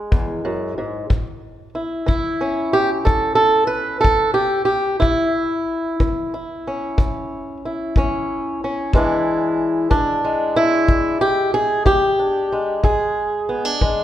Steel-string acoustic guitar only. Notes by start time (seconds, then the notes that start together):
Already playing: G#3 D4
0.12 E2
0.45 F#2
0.78 G#2
1.10 A2
1.75 E4
2.06 E3 E4
2.41 C#4
2.73 G4
3.05 A2 A4
3.35 A4
3.67 B4
4.01 E3 A4
4.34 G4
4.65 G4
5.00 A2 E4
6.00 E3
6.34 E4
6.67 C#4
6.98 A2
7.65 E4
7.97 E3 C#4
8.64 C#4
8.94 E2 E3 G#3 D4 E4
9.91 E3 D4
10.24 G#3
10.56 E4
10.88 E2
11.21 G4
11.54 G#4
11.85 E3 G4
12.19 D4
12.52 G#3
12.83 E2 G#4
13.49 B3
13.65 D4
13.81 E3 G#3